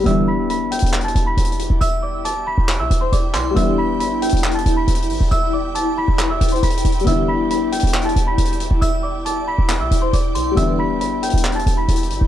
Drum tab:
HH |x-----x--xxxxxxx--xxxx--|x-----x-----x--x--x--x--|x-----x--xxxxxxx--xxxo--|x-----x-----x--xxxxxxxxx|
CP |------------x-----------|------------x--------x--|------------x-----------|------------x-----------|

HH |x-----x--xxx-xxx--xxxx--|x-----x-----x--x--x--x--|x-----x--xxx-xxx--xxxx--|
CP |------------x-----------|------------x-----------|------------x-----------|